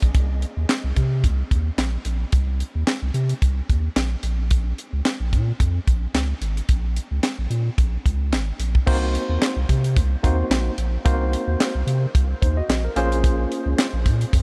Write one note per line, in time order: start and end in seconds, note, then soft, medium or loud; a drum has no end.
0.02 0.11 A#1 medium
0.02 kick medium
0.02 closed hi-hat medium
0.15 0.45 C2 loud
0.15 kick loud
0.15 closed hi-hat medium
0.42 closed hi-hat medium
0.57 0.66 D#2 loud
0.69 snare loud
0.69 clap medium
0.69 closed hi-hat medium
0.84 0.93 C2 medium
0.96 1.25 C3 loud
0.96 kick medium
0.96 closed hi-hat medium
1.24 1.43 C2 loud
1.24 kick loud
1.24 closed hi-hat medium
1.51 1.71 D#2 medium
1.51 kick medium
1.51 closed hi-hat medium
1.78 1.97 A#1 medium
1.78 snare medium
1.78 clap medium
1.78 closed hi-hat medium
2.05 2.25 A#1 medium
2.05 closed hi-hat medium
2.32 2.63 C2 medium
2.32 kick loud
2.32 closed hi-hat medium
2.60 closed hi-hat medium
2.75 2.84 D#2 loud
2.87 snare loud
2.87 clap medium
2.87 closed hi-hat medium
3.02 3.11 C2 medium
3.14 3.34 C3 loud
3.14 closed hi-hat medium
3.29 closed hi-hat medium
3.42 3.61 C2 medium
3.42 kick loud
3.42 closed hi-hat medium
3.69 3.89 D#2 medium
3.69 kick medium
3.69 closed hi-hat medium
3.96 4.16 A#1 medium
3.96 snare medium
3.96 clap medium
3.96 closed hi-hat medium
4.23 4.73 A#1 loud
4.23 closed hi-hat medium
4.51 kick loud
4.51 closed hi-hat loud
4.78 closed hi-hat medium
4.93 5.02 C#2 medium
5.05 snare medium
5.05 clap medium
5.05 closed hi-hat medium
5.20 5.34 A#1 medium
5.33 5.52 A#2 loud
5.33 kick medium
5.33 closed hi-hat medium
5.60 5.79 F2 loud
5.60 kick loud
5.60 closed hi-hat medium
5.87 6.07 A#1 medium
5.87 kick medium
5.87 closed hi-hat medium
6.14 6.34 C#2 medium
6.14 snare medium
6.14 clap medium
6.14 closed hi-hat medium
6.41 6.61 G#1 loud
6.41 closed hi-hat medium
6.57 closed hi-hat medium
6.69 6.99 A#1 loud
6.69 kick loud
6.69 closed hi-hat medium
6.96 closed hi-hat medium
7.11 7.20 C#2 loud
7.23 snare loud
7.23 clap medium
7.23 closed hi-hat medium
7.39 7.47 A#1 medium
7.50 7.70 A#2 medium
7.50 closed hi-hat medium
7.78 7.97 A#1 loud
7.78 kick loud
7.78 closed hi-hat medium
8.05 8.34 C#2 medium
8.05 kick medium
8.05 closed hi-hat medium
8.32 8.52 G#1 medium
8.32 snare medium
8.32 clap medium
8.32 closed hi-hat medium
8.59 8.79 A#1 medium
8.59 closed hi-hat medium
8.75 kick medium
8.86 9.18 C2 loud
8.86 9.54 A#3 medium
8.86 9.55 C4 medium
8.86 9.55 D#4 medium
8.86 9.55 F#4 medium
8.86 9.55 C5 loud
8.86 kick loud
8.86 crash loud
9.15 closed hi-hat medium
9.29 9.38 D#2 loud
9.42 snare loud
9.42 clap medium
9.42 closed hi-hat medium
9.56 9.65 C2 loud
9.69 9.98 C3 loud
9.69 kick medium
9.69 closed hi-hat medium
9.84 closed hi-hat medium
9.96 10.16 C2 loud
9.96 kick loud
9.96 closed hi-hat medium
10.23 10.43 D#2 loud
10.23 10.74 A#3 medium
10.23 10.74 C4 medium
10.23 10.74 D#4 medium
10.23 10.74 F#4 medium
10.23 10.74 C5 medium
10.23 kick medium
10.23 closed hi-hat medium
10.50 10.70 A#1 loud
10.50 snare loud
10.50 clap medium
10.50 closed hi-hat medium
10.78 10.98 A#1 medium
10.78 closed hi-hat medium
11.05 11.36 C2 loud
11.05 11.73 A#3 medium
11.05 11.73 C4 medium
11.05 11.73 D#4 medium
11.05 11.73 F#4 medium
11.05 11.73 C5 loud
11.05 kick loud
11.05 closed hi-hat loud
11.33 closed hi-hat medium
11.47 11.56 D#2 loud
11.60 snare loud
11.60 clap medium
11.60 closed hi-hat medium
11.75 11.84 C2 medium
11.87 12.06 C3 loud
11.87 closed hi-hat medium
12.15 12.34 C2 medium
12.15 kick loud
12.15 closed hi-hat medium
12.42 12.62 D#2 loud
12.42 12.57 D#4 medium
12.42 12.56 C5 medium
12.42 kick loud
12.42 closed hi-hat medium
12.57 12.83 F#4 medium
12.57 12.83 D#5 medium
12.69 12.88 A#1 medium
12.69 snare loud
12.69 clap medium
12.69 closed hi-hat medium
12.85 13.10 A#4 medium
12.96 13.46 A#1 loud
12.96 13.84 A#3 medium
12.96 13.84 C#4 medium
12.96 13.84 F4 medium
12.96 13.85 G#4 medium
12.96 13.85 C5 loud
12.96 closed hi-hat medium
13.12 closed hi-hat medium
13.24 kick loud
13.24 closed hi-hat loud
13.52 closed hi-hat medium
13.66 13.75 C#2 loud
13.79 snare loud
13.79 clap medium
13.79 closed hi-hat medium
13.93 14.07 A#1 loud
14.06 14.25 A#2 loud
14.06 kick medium
14.06 closed hi-hat medium
14.21 closed hi-hat medium
14.33 14.42 F2 loud
14.33 kick loud
14.33 closed hi-hat medium